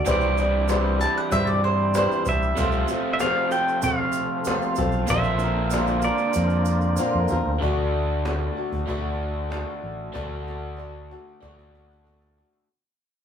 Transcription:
Already playing: D5
0.05 C2 C3 E3 G3 C4 D4 E4 G4 C5, cajon bass, shaker
0.11 D5
0.21 shaker
0.38 G3 D4 E4 C5, shaker
0.68 C3 E3 G3 D4 E4 C5, cajon slap, shaker
0.99 G3 D4 E4 C5 A5, shaker
1.17 F#5, shaker
1.30 G2 G3 D4 E4 C5 E5, cajon bass, shaker
1.47 D5
1.64 C5
1.94 C3 E3 G3 D4 E4 C5, cajon slap, shaker
2.12 shaker
2.25 C2 G3 D4 E4 C5 E5, cajon bass, shaker
2.42 shaker
2.56 C2 C3 F3 A3 C4 F4 A4 C5, cajon bass, shaker
2.72 shaker
2.88 C4 F4 A4, shaker
2.92 A3
3.13 E5
3.20 C3 F3 A3 C4 F4 A4 F5, cajon slap, shaker
3.51 A3 C4 F4 A4 G5, shaker
3.68 shaker
3.81 C3 A3 C4 F4 A4 F5, cajon bass, shaker
4.12 shaker
4.45 C3 F3 A3 C4 F4 A4, cajon slap, shaker
4.62 shaker
4.75 B1 A3 C4 F4 A4, cajon bass, shaker
4.92 shaker
5.06 A#2 D3 D4 F4 A#4 C5, cajon bass, shaker
5.10 A#1 A#3 C4 F4 A#4 E5
5.24 shaker
5.39 A#4, shaker
5.44 A#3 C4 F4
5.71 A#2 D3 A#3 C4 F4 A#4, cajon slap, shaker
5.87 shaker
6.02 C4 F4 A#4 D5, shaker
6.07 A#3
6.18 shaker
6.33 F2 A#3 C4 F4, shaker
6.37 A#4
6.50 shaker
6.65 shaker
6.81 shaker
6.97 A#2 D3 A#3 C4 F4 A#4, shaker
7.14 F2
7.28 E2 F4 A#4, shaker
7.32 A#3 C4
7.46 D2
7.62 D2 D3 A3 D4 F#4 A4, cajon bass
7.94 cajon slap
8.25 A3 D4 F#4 A4, cajon slap
8.57 D4 F#4 A4, cajon slap
8.72 D2, cajon bass
8.87 D2 D3 A3 D4 F#4 A4, cajon bass
9.20 cajon slap
9.50 A3 D4 F#4 A4, cajon slap
9.83 A1, cajon slap
10.13 D2 D3 A3 D4 F#4 A4, cajon bass, cajon slap
10.47 cajon slap
10.77 A3 D4 F#4 A4, cajon slap
11.10 D4 F#4 A4, cajon slap
11.40 D2 D3 A3 D4 F#4 A4, cajon bass, cajon slap
11.59 cajon slap
11.75 cajon slap
11.91 cajon slap
12.05 A3 D4 F#4 A4, cajon slap
12.22 cajon slap
12.37 D4 F#4 A4, cajon slap
12.53 cajon slap

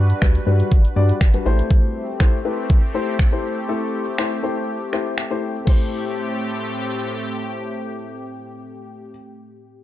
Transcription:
Already playing: G2 G3 D4 F#4 B4
0.10 closed hi-hat
0.22 D2 G3 D4 F#4 B4, finger snap, kick, closed hi-hat
0.35 closed hi-hat
0.46 G2 G3 D4 F#4 B4
0.60 closed hi-hat
0.71 G1, kick, closed hi-hat
0.85 closed hi-hat
0.96 G2 G3 D4 F#4 D5
1.09 closed hi-hat
1.21 G1, finger snap, kick, closed hi-hat
1.34 G3 D4 F#4 B4, closed hi-hat
1.45 A1 A3 C4 E4 G4 C5
1.59 closed hi-hat
1.71 kick
2.20 A3 E4 G4 C5, finger snap, kick
2.45 A3 E4 G4 B4
2.70 kick
2.94 A3 E4 G4 C5
3.19 finger snap, kick
3.32 A3 E4 G4 C5
3.69 A3 E4 G4 A4
4.18 A3 E4 G4 C5, finger snap
4.43 A3 E4 G4 C5
4.93 A3 E4 G4 C5 E5, finger snap
5.18 G5, finger snap
5.31 A3 E4 G4 C5
5.65 A2 A3 C4 E4 G4 C5, kick, crash

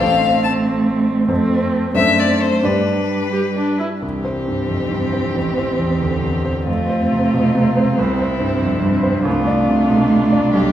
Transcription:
0.00 A1 A3 C4 A4 C5 F5
0.44 A5
1.28 F2 A3 C4 A4 C5
1.94 F#2 A3 C4 D4 A4 C5 E5
2.19 D5
2.42 C5
2.63 G2 G3 D4 G4 B4 D5
3.32 G4
3.55 D4
3.79 E4
4.02 C2 E3 C4 G4
4.25 C5
4.48 G2
4.70 F2
4.91 G2
5.13 C5
5.35 A1
5.57 C5
5.79 E2
6.01 D2
6.23 E2
6.45 C5
6.67 F2 A3 C4 F4
6.89 C5
7.12 C3
7.34 B2
7.55 C3
7.77 C5
7.98 C2 G3 E4
8.19 C5
8.40 G2
8.62 F2
8.82 G2
9.03 C5
9.25 C2 A3 D4 F4
9.47 D5
9.69 C3
9.90 B2
10.12 C3
10.32 D5
10.53 B1 G3 G4

